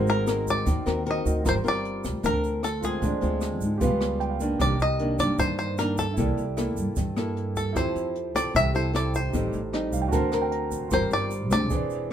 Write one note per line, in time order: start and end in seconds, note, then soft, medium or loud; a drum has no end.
0.00 0.62 G#1 loud
0.00 0.64 G#3 medium
0.00 0.24 C4 medium
0.00 1.21 D#4 medium
0.00 0.24 F#4 medium
0.00 1.22 F#4 soft
0.00 0.24 A#4 medium
0.00 1.23 A#4 medium
0.00 1.24 C5 medium
0.07 0.45 A#4 medium
0.07 closed hi-hat soft
0.07 shaker soft
0.26 0.66 C4 medium
0.26 0.66 F#4 soft
0.26 0.66 A#4 medium
0.26 cross-stick medium
0.26 closed hi-hat soft
0.26 shaker medium
0.47 1.04 D5 medium
0.47 kick soft
0.47 closed hi-hat soft
0.47 shaker medium
0.66 0.85 D#2 medium
0.66 1.43 D#3 medium
0.66 kick medium
0.66 closed hi-hat soft
0.66 shaker medium
0.86 1.23 D#2 medium
0.86 1.02 C4 medium
0.86 1.03 F#4 medium
0.86 1.03 A#4 medium
0.86 cross-stick medium
0.86 closed hi-hat soft
0.86 shaker soft
1.06 1.42 C4 medium
1.06 1.42 F#4 medium
1.06 1.42 A#4 medium
1.06 closed hi-hat soft
1.11 1.36 D#5 medium
1.24 1.44 D2 medium
1.24 1.44 D#4 soft
1.24 1.45 F#4 soft
1.24 1.46 A#4 soft
1.24 1.46 D#5 soft
1.24 kick soft
1.24 closed hi-hat soft
1.24 shaker medium
1.43 1.64 G1 medium
1.43 2.22 G3 medium
1.43 1.56 C4 soft
1.43 2.79 F4 soft
1.43 1.57 F4 medium
1.43 1.57 A#4 medium
1.43 kick soft
1.43 cross-stick medium
1.43 closed hi-hat soft
1.43 shaker medium
1.47 2.81 A#4 soft
1.47 1.54 C5 medium
1.47 2.82 C5 soft
1.64 2.06 G1 medium
1.64 2.20 C4 medium
1.64 2.20 F4 soft
1.64 2.20 A#4 medium
1.64 closed hi-hat soft
1.64 shaker soft
1.68 2.22 D5 medium
1.85 closed hi-hat soft
2.04 2.13 D2 medium
2.04 kick soft
2.04 cross-stick soft
2.04 closed hi-hat soft
2.04 shaker medium
2.23 2.99 D2 medium
2.23 3.00 D3 soft
2.23 2.62 C4 medium
2.23 2.63 F4 soft
2.23 2.63 A#4 medium
2.23 2.64 A#4 medium
2.23 kick medium
2.23 closed hi-hat soft
2.23 shaker medium
2.43 closed hi-hat soft
2.43 shaker soft
2.63 2.84 A4 medium
2.63 cross-stick medium
2.63 closed hi-hat soft
2.63 shaker soft
2.81 3.19 G#3 medium
2.81 3.19 C4 medium
2.81 2.98 F4 soft
2.81 3.19 F4 medium
2.81 3.58 G#4 medium
2.81 3.02 A4 soft
2.81 3.03 A#4 soft
2.81 3.01 C5 soft
2.81 kick soft
2.81 closed hi-hat soft
2.81 shaker medium
2.99 3.21 D2 medium
2.99 3.79 D3 medium
2.99 3.78 F4 soft
2.99 3.79 G#4 soft
2.99 3.80 C5 soft
2.99 kick soft
2.99 closed hi-hat soft
2.99 shaker medium
3.05 3.81 D5 soft
3.21 3.61 D2 medium
3.21 3.78 G#3 medium
3.21 3.78 C4 medium
3.21 3.78 F4 medium
3.21 closed hi-hat soft
3.21 shaker soft
3.41 cross-stick medium
3.41 closed hi-hat soft
3.41 shaker soft
3.61 3.82 G#2 medium
3.61 kick soft
3.61 closed hi-hat soft
3.61 shaker medium
3.78 4.56 C#2 medium
3.78 4.58 C#3 soft
3.78 4.37 G3 medium
3.78 4.37 B3 medium
3.78 4.58 F4 soft
3.78 4.57 G4 soft
3.78 kick medium
3.78 closed hi-hat soft
3.78 shaker medium
3.82 4.38 F4 medium
3.82 4.59 B4 medium
3.82 4.28 F5 medium
4.01 cross-stick medium
4.01 closed hi-hat soft
4.01 shaker soft
4.20 4.30 G5 medium
4.20 closed hi-hat soft
4.30 4.58 F5 soft
4.40 4.76 D#3 medium
4.40 4.77 A#3 medium
4.40 4.77 D4 medium
4.40 kick soft
4.40 closed hi-hat soft
4.40 shaker medium
4.59 4.78 C2 medium
4.59 5.37 C3 medium
4.59 6.14 G4 soft
4.59 6.15 A#4 soft
4.59 4.81 D5 medium
4.59 6.16 D6 soft
4.59 kick soft
4.59 cross-stick soft
4.59 closed hi-hat soft
4.59 shaker medium
4.79 5.20 C2 medium
4.79 5.20 D#5 loud
4.79 closed hi-hat soft
4.79 shaker soft
4.99 5.16 D#3 medium
4.99 5.16 A#3 soft
4.99 5.16 D4 medium
4.99 closed hi-hat soft
5.19 5.28 G2 medium
5.19 5.75 D#3 soft
5.19 5.75 A#3 soft
5.19 5.75 D4 medium
5.19 5.39 D5 medium
5.19 kick soft
5.19 cross-stick soft
5.19 closed hi-hat soft
5.19 shaker medium
5.39 6.14 G2 medium
5.39 6.16 G2 medium
5.39 5.58 C5 medium
5.39 kick medium
5.39 closed hi-hat soft
5.39 shaker medium
5.58 5.77 C5 medium
5.58 closed hi-hat soft
5.58 shaker soft
5.78 6.05 D#3 medium
5.78 6.05 A#3 soft
5.78 6.05 D4 medium
5.78 5.98 A#4 medium
5.78 cross-stick medium
5.78 closed hi-hat soft
5.78 shaker soft
5.97 6.73 A4 medium
5.97 kick soft
5.97 closed hi-hat soft
5.97 shaker medium
6.14 6.36 C2 medium
6.14 6.94 C3 medium
6.14 6.43 A#3 medium
6.14 7.70 E4 soft
6.14 7.71 A4 soft
6.14 kick soft
6.14 closed hi-hat soft
6.14 shaker medium
6.18 6.43 E4 medium
6.18 6.43 A4 medium
6.18 7.73 D5 soft
6.37 6.77 C2 medium
6.37 closed hi-hat soft
6.37 shaker soft
6.57 6.96 A#3 medium
6.57 6.96 E4 soft
6.57 6.97 A4 soft
6.57 cross-stick medium
6.57 closed hi-hat soft
6.57 shaker soft
6.77 6.86 G2 medium
6.77 kick soft
6.77 closed hi-hat soft
6.77 shaker medium
6.96 7.73 G2 soft
6.96 7.72 G2 loud
6.96 kick medium
6.96 closed hi-hat soft
6.96 shaker medium
7.16 7.72 A#3 medium
7.16 7.73 E4 medium
7.16 7.73 A4 medium
7.16 cross-stick medium
7.16 closed hi-hat soft
7.16 shaker soft
7.37 closed hi-hat soft
7.56 7.77 A4 medium
7.56 kick soft
7.56 closed hi-hat soft
7.56 shaker medium
7.73 8.52 F3 medium
7.73 8.15 C4 medium
7.73 8.71 E4 soft
7.73 8.15 E4 soft
7.73 8.72 G4 soft
7.73 8.15 A4 medium
7.73 8.73 A4 soft
7.73 8.35 C5 medium
7.73 kick soft
7.73 cross-stick soft
7.73 closed hi-hat soft
7.73 shaker soft
7.79 8.74 C5 soft
7.96 8.35 F2 medium
7.96 closed hi-hat soft
7.96 shaker soft
8.15 closed hi-hat soft
8.35 8.44 C2 medium
8.35 8.71 C4 medium
8.35 8.71 E4 soft
8.35 8.71 A4 medium
8.35 8.55 D5 medium
8.35 kick soft
8.35 cross-stick medium
8.35 shaker medium
8.54 9.30 C2 loud
8.54 9.31 C3 medium
8.54 8.75 E5 loud
8.54 kick medium
8.54 closed hi-hat soft
8.54 shaker medium
8.73 8.91 C4 medium
8.73 9.33 E4 soft
8.73 8.91 E4 soft
8.73 9.31 G4 soft
8.73 8.91 A4 medium
8.73 9.33 A4 soft
8.73 8.95 C5 medium
8.73 9.34 C5 soft
8.73 closed hi-hat soft
8.73 shaker soft
8.93 9.19 C4 medium
8.93 9.19 E4 medium
8.93 9.20 A4 medium
8.93 9.15 D5 medium
8.93 cross-stick medium
8.93 closed hi-hat soft
8.93 shaker soft
9.14 9.90 C5 medium
9.14 kick soft
9.14 closed hi-hat soft
9.14 shaker medium
9.30 9.52 A1 medium
9.30 10.11 A2 medium
9.30 9.59 G3 medium
9.30 9.59 C4 medium
9.30 10.09 D#4 soft
9.30 10.10 G4 soft
9.30 kick soft
9.30 closed hi-hat soft
9.30 shaker medium
9.35 9.59 D#4 medium
9.35 10.11 A4 soft
9.35 10.12 C5 soft
9.53 9.93 A1 medium
9.53 closed hi-hat soft
9.53 shaker soft
9.73 10.11 G3 soft
9.73 10.11 C4 soft
9.73 10.11 D#4 medium
9.73 cross-stick medium
9.73 closed hi-hat soft
9.93 10.12 C2 medium
9.93 10.02 F5 soft
9.93 kick soft
9.93 closed hi-hat soft
9.93 shaker medium
10.02 10.11 G5 soft
10.08 10.89 D3 medium
10.08 10.29 C4 medium
10.08 10.88 F#4 medium
10.08 10.90 A#4 medium
10.08 10.39 A5 medium
10.08 kick medium
10.12 10.88 D2 medium
10.12 10.29 F#4 medium
10.12 10.29 A#4 medium
10.12 10.91 C5 medium
10.12 closed hi-hat soft
10.12 shaker medium
10.32 10.88 C4 soft
10.32 10.89 F#4 medium
10.32 10.89 A#4 medium
10.32 cross-stick medium
10.32 closed hi-hat soft
10.32 shaker soft
10.42 10.51 G5 soft
10.52 10.89 A#5 soft
10.52 closed hi-hat soft
10.71 kick soft
10.71 closed hi-hat soft
10.71 shaker medium
10.88 11.10 G1 medium
10.88 11.69 G3 medium
10.88 11.31 C4 medium
10.88 11.68 F4 soft
10.88 11.31 F4 medium
10.88 11.70 A#4 soft
10.88 kick medium
10.88 cross-stick medium
10.88 closed hi-hat soft
10.88 shaker medium
10.92 11.31 A#4 medium
10.92 11.11 C5 medium
10.92 11.70 C5 medium
11.11 11.51 G1 medium
11.11 11.51 D5 medium
11.11 closed hi-hat soft
11.11 shaker soft
11.31 closed hi-hat soft
11.31 shaker soft
11.50 11.71 D2 medium
11.50 12.07 C4 soft
11.50 12.07 D4 medium
11.50 12.07 G#4 medium
11.50 12.11 D5 medium
11.50 kick soft
11.50 cross-stick soft
11.50 closed hi-hat soft
11.50 shaker medium
11.70 12.12 E1 medium
11.70 12.12 E3 medium
11.70 12.12 G#4 soft
11.70 12.12 C5 soft
11.70 kick medium
11.70 closed hi-hat soft
11.70 shaker medium
11.74 12.12 D5 medium
11.90 closed hi-hat soft
11.90 shaker soft